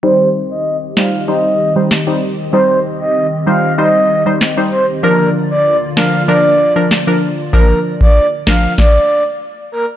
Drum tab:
CP |------x-----x---|------------x---|------x-----x---|------x---------|
SD |------o-----o---|------------o---|------o-----o---|------o-o-------|
BD |----------------|----------------|----------------|o--o--o-o-------|